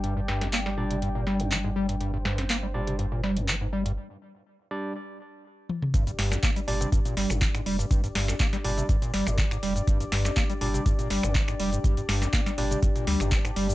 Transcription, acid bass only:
X:1
M:4/4
L:1/16
Q:1/4=122
K:Gm
V:1 name="Acid bass" clef=bass
G,, G,, G,, F,, B, G, B,, C, G,, B,, G, F,, G, _A,, G, G,, | G,, G,, G,, F,, B, G, B,, C, G,, B,, G, F,, G, _A,, G, G,, | z16 | G,, G,, G,, F,, B, G, B,, C, G,, B,, G, F,, G, _A,, G, G,, |
G,, G,, G,, F,, B, G, B,, C, G,, B,, G, F,, G, _A,, G, G,, | G,, G,, G,, F,, B, G, B,, C, G,, B,, G, F,, G, _A,, G, G,, | G,, G,, G,, F,, B, G, B,, C, G,, B,, G, F,, G, _A,, G, G,, |]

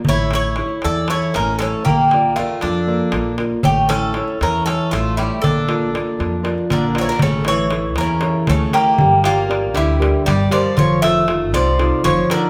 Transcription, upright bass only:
X:1
M:7/8
L:1/8
Q:1/4=118
K:none
V:1 name="Upright bass" clef=bass
A,,,3 E,,2 A,,,2 | _B,,,3 F,,2 B,,,2 | A,,,3 E,,2 A,,,2 | _B,,,3 F,,2 B,,,2 |
A,,,3 E,,2 D,, z | G,,,3 D,,2 G,,, z | F,,,3 C,,2 F,,, z |]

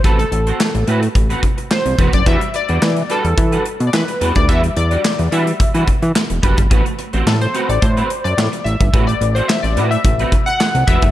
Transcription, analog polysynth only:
X:1
M:4/4
L:1/16
Q:1/4=108
K:Ador
V:1 name="Analog polysynth"
A A6 z4 z c3 d | e2 d4 A4 z3/2 d/2 B3 d | e2 d4 e4 z6 | z4 A c2 d c3 d3 e2- |
e d2 c e d2 e4 f3 e2 |]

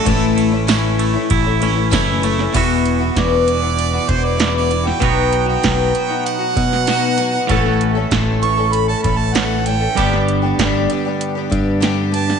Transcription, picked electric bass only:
X:1
M:4/4
L:1/8
Q:1/4=97
K:A
V:1 name="Picked electric bass" clef=bass
A,,,4 A,,,2 F,,,2 | [K:Edor] E,,,2 E,,,3 E,,,3 | B,,,2 B,,, z2 B,,3 | A,,,2 A,,,3 A,,,3 |
G,,,2 G,,, z2 G,,3 |]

